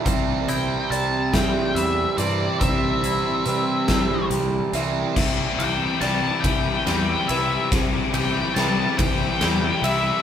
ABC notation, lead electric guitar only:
X:1
M:6/8
L:1/8
Q:3/8=47
K:Clyd
V:1 name="Lead electric guitar"
z g a g e d | e4 z2 | z g a g2 e | z g a g2 e |]